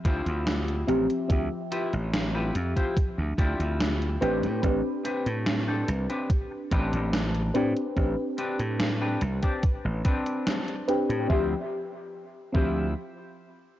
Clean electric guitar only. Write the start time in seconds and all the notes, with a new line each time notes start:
0.05 E4 F4 G4 C5
1.72 E4 F4 G4 B4
2.13 muted clean electric guitar stroke
2.34 E4 F4 G4 B4
2.76 E4 F4 G4 C5
3.18 muted clean electric guitar stroke
3.38 E4 F4 G4 D5
4.21 C4 D4 G4 B4
5.05 C4 D4 G4 B4
5.47 muted clean electric guitar stroke
5.68 C4 D4 G4 A4
6.10 C4 D4 G4 B4
6.51 muted clean electric guitar stroke
6.71 C4 D4 G4 B4
8.38 C4 D4 G4 B4
8.80 muted clean electric guitar stroke
9.01 C4 D4 G4 B4
9.43 C4 D4 G4 D5
9.85 muted clean electric guitar stroke
10.05 C4 D4 G4 B4
11.30 E4 F4 G4 C5
12.55 E4 F4 G4 C5